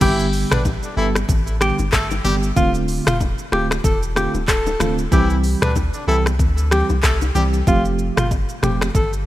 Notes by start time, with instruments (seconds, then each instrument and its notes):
0.01 sub bass G1, fm electric piano D3 G3 B3 G4, horn section E3 E4, alto saxophone G4, kick, crash, low conga, shaker
0.19 shaker
0.33 open hi-hat, shaker
0.51 sub bass A1, horn section D3 D4, alto saxophone B4, finger snap, cross-stick, mid tom, shaker
0.65 kick, high bongo, low bongo, shaker
0.83 horn section D3 D4, shaker
0.97 sub bass G1, fm electric piano D3 G3 B3 G4, horn section E3 E4, alto saxophone A4
1.15 finger snap, cross-stick, high bongo, shaker
1.29 sub bass A1, kick, low conga, shaker
1.47 shaker
1.61 fm electric piano D3 G3 B3 G4, alto saxophone G4, finger snap, cross-stick, shaker
1.79 sub bass G1, low bongo, shaker
1.93 sub bass G1, horn section A3 A4, finger snap, kick, cross-stick, clap, high bongo, shaker
2.11 low bongo, shaker
2.24 sub bass G1, fm electric piano D3 G3 B3 G4, horn section G3 G4, low conga, shaker
2.43 shaker
2.56 sub bass D1, fm electric piano D3 A3 C4 F4, alto saxophone F4, kick, low conga, shaker
2.75 shaker
2.88 open hi-hat, shaker
3.07 sub bass E1, alto saxophone F4, finger snap, cross-stick, mid tom, shaker
3.20 kick, high bongo, low bongo, shaker
3.38 shaker
3.52 sub bass D1, fm electric piano D3 A3 C4 F4, alto saxophone G4, finger snap, cross-stick
3.71 finger snap, cross-stick, high bongo, shaker
3.84 sub bass E1, alto saxophone A4, kick, low conga, shaker
4.03 shaker
4.16 fm electric piano D3 A3 C4 F4, alto saxophone G4, finger snap, cross-stick, shaker
4.34 sub bass D1, low bongo, shaker
4.48 sub bass D1, alto saxophone A4, finger snap, kick, cross-stick, clap, high bongo, shaker
4.66 low bongo, shaker
4.80 sub bass D1, fm electric piano D3 A3 C4 F4, finger snap, cross-stick, low conga, shaker
4.98 shaker
5.12 sub bass C2, fm electric piano E3 G3 C4 G4, horn section E3 E4, alto saxophone G4, kick, low conga, shaker
5.30 shaker
5.44 open hi-hat, shaker
5.62 sub bass D2, horn section D3 D4, alto saxophone B4, finger snap, cross-stick, mid tom, shaker
5.76 kick, high bongo, low bongo, shaker
5.94 horn section D3 D4, shaker
6.07 sub bass C2, fm electric piano E3 G3 C4 G4, horn section E3 E4, alto saxophone A4
6.26 finger snap, cross-stick, high bongo, shaker
6.39 sub bass D2, kick, low conga, shaker
6.58 shaker
6.71 fm electric piano E3 G3 C4 G4, alto saxophone G4, finger snap, cross-stick, shaker
6.89 sub bass C2, low bongo, shaker
7.03 sub bass C2, horn section A3 A4, finger snap, kick, cross-stick, clap, high bongo, shaker
7.21 low bongo, shaker
7.35 sub bass C2, fm electric piano E3 G3 C4 G4, horn section G3 G4, low conga, shaker
7.53 shaker
7.67 sub bass F1, fm electric piano F3 A3 C4 G4, alto saxophone F4, kick, low conga, shaker
7.85 shaker
7.99 shaker
8.17 sub bass G1, alto saxophone F4, finger snap, cross-stick, mid tom, shaker
8.31 kick, high bongo, shaker
8.49 shaker
8.62 sub bass F1, fm electric piano F3 A3 C4 G4, alto saxophone G4, finger snap, cross-stick, mid tom, shaker
8.81 finger snap, cross-stick, high bongo, shaker
8.95 sub bass G1, alto saxophone A4, kick, low conga, shaker
9.13 shaker